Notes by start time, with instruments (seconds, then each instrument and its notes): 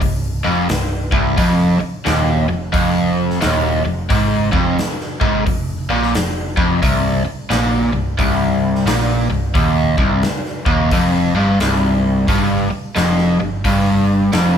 0.01 picked electric bass C1, overdriven electric guitar C2, kick, open hi-hat
0.44 picked electric bass F1, overdriven electric guitar F2
0.69 picked electric bass C1, overdriven electric guitar C2, snare, open hi-hat
1.12 picked electric bass C1, overdriven electric guitar C2, kick
1.37 picked electric bass F1, overdriven electric guitar F2, kick, open hi-hat
1.80 muted overdriven electric guitar stroke, muted picked electric bass stroke
2.05 picked electric bass D#1, overdriven electric guitar D#2, snare, open hi-hat
2.49 picked electric bass F1, overdriven electric guitar F2
2.73 picked electric bass F1, overdriven electric guitar F2, kick, open hi-hat
3.30 snare
3.41 picked electric bass D#1, overdriven electric guitar D#2, snare, open hi-hat
3.85 picked electric bass F1, overdriven electric guitar F2
4.09 picked electric bass G#1, overdriven electric guitar G#2, kick, open hi-hat
4.52 picked electric bass F1, overdriven electric guitar F2, kick
4.79 snare, open hi-hat
5.01 snare
5.21 picked electric bass G#1, overdriven electric guitar G#2, kick
5.47 picked electric bass F1, overdriven electric guitar F2, kick, open hi-hat
5.90 picked electric bass A#1, overdriven electric guitar A#2
6.03 snare
6.15 picked electric bass F1, overdriven electric guitar F2, snare, open hi-hat
6.57 picked electric bass F1, overdriven electric guitar F2, kick
6.82 picked electric bass C1, overdriven electric guitar C2, kick, open hi-hat
7.25 muted overdriven electric guitar stroke
7.50 picked electric bass A#1, overdriven electric guitar A#2, snare, open hi-hat
7.93 picked electric bass C1, overdriven electric guitar C2
8.19 picked electric bass C1, overdriven electric guitar C2, kick, open hi-hat
8.75 snare
8.86 picked electric bass A#1, overdriven electric guitar A#2, snare, open hi-hat
9.29 picked electric bass C1, overdriven electric guitar C2
9.54 picked electric bass D#1, overdriven electric guitar D#2, kick, open hi-hat
9.98 picked electric bass C1, overdriven electric guitar C2, kick
10.23 snare, open hi-hat
10.45 snare
10.66 picked electric bass D#1, overdriven electric guitar D#2, kick
10.91 picked electric bass F1, overdriven electric guitar F2, kick, open hi-hat
11.34 picked electric bass G1, overdriven electric guitar G2
11.60 picked electric bass C1, overdriven electric guitar C2, snare, open hi-hat
12.28 picked electric bass G1, overdriven electric guitar G2, kick, open hi-hat
12.71 muted overdriven electric guitar stroke, muted picked electric bass stroke
12.96 picked electric bass F1, overdriven electric guitar F2, snare, open hi-hat
13.18 snare
13.40 picked electric bass G1, overdriven electric guitar G2
13.65 picked electric bass G1, overdriven electric guitar G2, kick, open hi-hat
14.33 picked electric bass F1, overdriven electric guitar F2, snare, open hi-hat